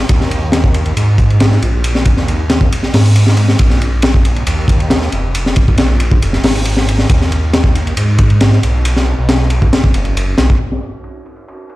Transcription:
0.09 0.93 D#2 medium
0.09 kick loud
0.09 ride medium
0.21 snare soft
0.31 ride medium
0.52 snare loud
0.52 ride medium
0.64 kick medium
0.74 ride medium
0.86 ride soft
0.97 1.59 G#2 medium
0.97 ride medium
1.18 kick medium
1.18 ride medium
1.30 ride soft
1.40 snare loud
1.40 ride medium
1.52 snare soft
1.62 2.13 A#1 medium
1.62 ride medium
1.84 ride medium
1.95 snare soft
2.05 kick medium
2.05 ride medium
2.17 2.68 D#2 medium
2.17 snare soft
2.28 ride medium
2.50 snare loud
2.50 ride medium
2.61 kick medium
2.72 ride medium
2.83 snare soft
2.93 3.56 G#2 loud
2.93 snare loud
2.93 open hi-hat medium
3.06 ride soft
3.16 ride medium
3.27 snare medium
3.37 ride medium
3.49 snare medium
3.59 4.43 A#1 loud
3.59 kick loud
3.59 ride medium
3.70 snare soft
3.81 ride medium
4.02 snare loud
4.02 ride medium
4.14 kick medium
4.25 ride medium
4.36 ride soft
4.47 5.09 D#2 medium
4.47 ride medium
4.68 kick medium
4.68 ride medium
4.80 ride soft
4.90 snare loud
4.90 ride medium
5.02 snare soft
5.12 5.64 F1 medium
5.12 ride medium
5.35 ride medium
5.46 snare soft
5.56 kick medium
5.56 ride medium
5.68 6.19 A#1 medium
5.68 kick medium
5.78 snare loud
5.78 ride medium
6.00 ride medium
6.11 kick medium
6.22 6.39 F1 loud
6.22 ride medium
6.33 snare soft
6.44 7.06 G#1 medium
6.44 snare loud
6.44 open hi-hat medium
6.55 ride soft
6.65 ride medium
6.77 snare medium
6.89 ride medium
6.98 snare soft
7.09 7.94 D#2 loud
7.09 kick loud
7.09 ride medium
7.21 snare soft
7.32 ride medium
7.53 snare loud
7.53 ride medium
7.64 kick loud
7.75 ride medium
7.87 ride soft
7.97 8.59 G#2 medium
7.97 ride medium
8.18 kick loud
8.18 ride medium
8.30 ride soft
8.41 snare loud
8.41 ride medium
8.52 snare soft
8.63 9.14 B1 medium
8.63 ride medium
8.85 ride medium
8.97 snare soft
9.18 9.69 B1 medium
9.29 snare loud
9.29 ride medium
9.50 ride medium
9.62 kick medium
9.73 snare loud
9.73 ride medium
9.84 kick medium
9.94 10.34 F#1 medium
9.94 ride medium
10.05 ride soft
10.17 ride medium
10.38 10.56 B1 loud
10.38 snare loud
10.38 ride medium
10.50 kick medium
10.60 ride medium
10.72 snare soft
10.81 ride medium
11.04 ride medium
11.26 ride medium
11.36 ride soft
11.48 ride medium
11.70 ride medium

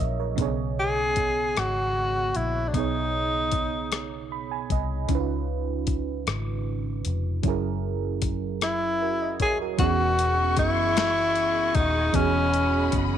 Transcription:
0.00 0.35 A#1 medium
0.00 0.33 F#3 medium
0.00 0.34 C#4 medium
0.00 0.35 E4 medium
0.00 0.35 G#4 medium
0.00 0.20 A#4 medium
0.00 0.20 C#5 medium
0.00 0.18 D#5 medium
0.00 0.40 E5 medium
0.20 0.56 A#4 soft
0.20 0.41 C#5 medium
0.36 1.52 B1 medium
0.36 2.68 C#3 medium
0.36 2.69 B3 medium
0.36 0.45 D4 soft
0.36 kick medium
0.36 closed hi-hat medium
0.41 2.71 G#4 medium
0.41 2.71 C#5 medium
0.45 2.73 D#5 medium
0.79 1.60 G#4 loud
1.16 kick medium
1.16 closed hi-hat medium
1.56 2.31 G#1 medium
1.56 2.38 F#4 medium
1.56 cross-stick loud
1.56 closed hi-hat soft
2.35 2.71 A#1 medium
2.35 2.70 E4 medium
2.35 closed hi-hat medium
2.68 2.75 D4 medium
2.73 4.66 B1 medium
2.73 5.04 B2 medium
2.73 5.05 B3 medium
2.73 4.31 D#4 medium
2.73 5.06 D#4 soft
2.73 kick medium
2.73 closed hi-hat medium
2.77 5.07 G#4 medium
2.77 5.08 C#5 medium
3.52 kick medium
3.52 closed hi-hat medium
3.92 cross-stick loud
3.92 closed hi-hat medium
4.32 4.49 B5 medium
4.51 4.69 G#5 medium
4.70 5.05 C2 medium
4.70 5.07 D#5 medium
4.70 kick medium
4.70 closed hi-hat medium
5.08 6.23 C#2 medium
5.08 7.40 C#3 medium
5.08 7.41 C#4 medium
5.08 7.41 D#4 medium
5.08 kick loud
5.08 closed hi-hat medium
5.13 5.17 E4 soft
5.13 7.43 B4 medium
5.20 7.46 F4 medium
5.87 kick medium
5.87 closed hi-hat medium
6.27 7.01 G#1 medium
6.27 cross-stick loud
6.27 closed hi-hat medium
7.05 7.41 F1 medium
7.05 closed hi-hat medium
7.43 9.40 F#1 medium
7.43 9.75 F#3 medium
7.43 9.76 C#4 medium
7.43 9.76 E4 medium
7.43 kick medium
7.43 closed hi-hat medium
7.48 9.00 G#4 medium
7.48 9.00 A#4 medium
8.22 kick medium
8.22 closed hi-hat medium
8.61 9.37 E4 medium
8.61 cross-stick loud
8.61 closed hi-hat medium
9.02 9.21 F#4 soft
9.02 9.20 A#4 medium
9.22 9.40 D#5 medium
9.40 9.76 D#1 medium
9.40 9.58 G#4 medium
9.40 9.59 A#4 medium
9.40 9.59 C#5 medium
9.40 kick medium
9.40 closed hi-hat medium
9.61 9.82 F#4 soft
9.61 9.98 A#4 medium
9.78 10.58 E1 loud
9.78 12.10 E3 medium
9.78 12.10 B3 medium
9.78 12.11 C#4 medium
9.78 10.54 F#4 loud
9.78 13.18 G#4 medium
9.78 13.18 D#5 medium
9.78 13.18 F#5 medium
9.78 12.12 C#6 medium
9.78 kick loud
9.78 closed hi-hat medium
9.82 12.12 F#4 medium
9.82 12.13 G#4 medium
9.82 12.12 D#5 medium
10.19 closed hi-hat medium
10.57 11.71 F#1 medium
10.57 11.77 E4 loud
10.57 kick medium
10.57 closed hi-hat medium
10.97 snare loud
10.97 closed hi-hat medium
11.35 closed hi-hat soft
11.75 12.11 D#1 medium
11.75 12.16 D#4 medium
11.75 kick medium
11.75 closed hi-hat soft
12.13 12.89 E1 medium
12.13 13.18 E3 medium
12.13 13.18 B3 medium
12.13 13.03 C#4 loud
12.13 13.18 C#4 medium
12.13 13.18 B5 medium
12.13 kick loud
12.13 closed hi-hat medium
12.17 13.18 F#4 medium
12.17 13.18 G#4 medium
12.17 13.18 D#5 medium
12.54 closed hi-hat medium
12.92 13.18 F#1 medium
12.92 kick medium
12.92 closed hi-hat medium

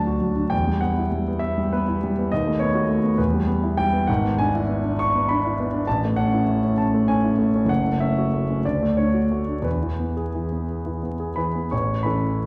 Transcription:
0.00 0.49 D2 soft
0.00 0.21 F#3 soft
0.00 0.15 D4 soft
0.00 0.55 A5 medium
0.07 0.31 F#4 soft
0.21 0.46 F#3 soft
0.36 0.51 D4 soft
0.50 2.27 E2 soft
0.50 0.81 G5 medium
0.68 0.92 G3 soft
0.81 1.06 B3 soft
0.81 1.42 F#5 medium
0.98 1.22 E4 soft
1.12 1.36 G3 soft
1.28 1.72 B3 soft
1.39 1.71 E5 medium
1.58 1.81 G3 soft
1.73 1.96 B3 soft
1.73 2.31 B4 medium
1.88 2.11 E4 soft
2.03 2.26 G3 soft
2.18 2.32 B3 soft
2.32 3.17 D#2 soft
2.32 2.60 D#5 medium
2.47 2.70 A3 soft
2.59 2.84 B3 soft
2.59 3.18 C#5 medium
2.75 2.98 F#4 soft
2.89 3.13 A3 soft
3.03 3.18 B3 soft
3.18 4.06 E2 soft
3.18 3.48 B4 medium
3.34 3.58 G3 soft
3.47 3.72 B3 soft
3.63 3.88 E4 soft
3.77 4.03 G3 soft
3.77 4.08 G5 medium
3.93 4.08 B3 soft
4.07 5.82 G#1 medium
4.07 4.38 F#5 medium
4.24 4.47 B3 soft
4.39 4.63 D4 soft
4.39 4.98 G#5 medium
4.55 4.78 E4 soft
4.69 4.92 B3 soft
4.84 5.29 D4 soft
4.99 5.28 C#6 medium
5.15 5.38 B3 soft
5.29 5.53 D4 soft
5.29 5.86 B5 medium
5.46 5.67 E4 soft
5.60 5.82 B3 soft
5.74 5.87 D4 soft
5.87 7.66 A1 medium
5.87 6.17 A5 medium
6.05 6.27 A3 soft
6.16 6.42 C#4 soft
6.16 6.78 F#5 medium
6.34 6.57 E4 soft
6.49 6.72 A3 soft
6.64 7.07 C#4 soft
6.78 7.07 A5 medium
6.94 7.17 A3 soft
7.08 7.32 C#4 soft
7.08 7.69 G#5 medium
7.24 7.48 E4 soft
7.38 7.63 A3 soft
7.55 7.70 C#4 soft
7.65 8.59 F#1 soft
7.65 8.00 F#5 medium
7.86 8.10 A3 soft
8.00 8.26 C#4 soft
8.00 8.64 E5 medium
8.18 8.42 F#4 soft
8.34 8.58 A3 soft
8.50 8.65 C#4 soft
8.65 9.63 D2 soft
8.65 8.97 D5 medium
8.83 9.08 A3 soft
8.97 9.24 D4 soft
8.97 9.66 C#5 medium
9.14 9.41 F#4 soft
9.32 9.59 A3 soft
9.48 9.65 D4 soft
9.62 11.66 E2 soft
9.62 11.36 B4 soft
9.83 10.11 E3 soft
10.00 10.28 B3 soft
10.17 10.46 G#4 soft
10.35 10.63 E3 soft
10.52 11.01 B3 soft
10.86 11.14 E3 soft
11.03 11.31 B3 soft
11.20 11.48 G#4 soft
11.36 11.65 E3 soft
11.36 11.69 B4 soft
11.36 11.71 B5 medium
11.55 11.72 B3 soft
11.71 12.04 A1 medium
11.71 12.03 C#5 soft
11.71 12.04 C#6 medium
12.03 12.46 E3 soft
12.03 12.46 C#4 soft
12.03 12.46 A4 soft
12.03 12.46 B4 soft
12.03 12.46 B5 medium

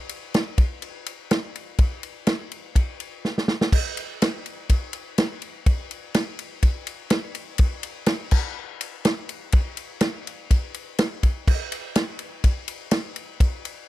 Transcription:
0.09 ride medium
0.34 snare loud
0.34 ride loud
0.58 kick loud
0.58 ride medium
0.82 ride loud
1.06 ride medium
1.31 snare loud
1.31 ride loud
1.55 ride medium
1.78 kick loud
1.78 ride loud
2.03 ride medium
2.27 snare loud
2.27 ride loud
2.52 ride medium
2.76 kick medium
2.76 ride medium
3.00 ride medium
3.25 snare medium
3.38 snare medium
3.48 snare medium
3.61 snare medium
3.72 kick loud
3.72 crash loud
3.97 ride medium
4.22 snare loud
4.22 ride loud
4.46 ride medium
4.69 kick medium
4.69 ride loud
4.93 ride medium
5.18 snare loud
5.18 ride loud
5.42 ride medium
5.66 kick loud
5.66 ride loud
5.91 ride medium
6.14 snare loud
6.14 ride loud
6.39 ride medium
6.63 kick medium
6.63 ride loud
6.87 ride medium
7.10 snare loud
7.10 ride loud
7.35 ride medium
7.58 kick loud
7.58 ride loud
7.83 ride medium
8.06 snare loud
8.06 ride loud
8.31 kick loud
8.31 crash loud
8.81 ride medium
9.05 snare loud
9.05 ride loud
9.29 ride medium
9.52 kick loud
9.52 ride loud
9.77 ride medium
10.01 snare loud
10.01 ride loud
10.27 ride medium
10.51 kick medium
10.51 ride loud
10.74 ride medium
10.98 snare loud
10.98 ride loud
11.23 kick medium
11.23 ride medium
11.47 kick loud
11.47 crash loud
11.72 ride medium
11.95 snare loud
11.95 ride loud
12.19 ride medium
12.44 kick medium
12.44 ride loud
12.68 ride medium
12.91 snare loud
12.91 ride loud
13.16 ride medium
13.40 kick loud
13.40 ride loud
13.65 ride medium

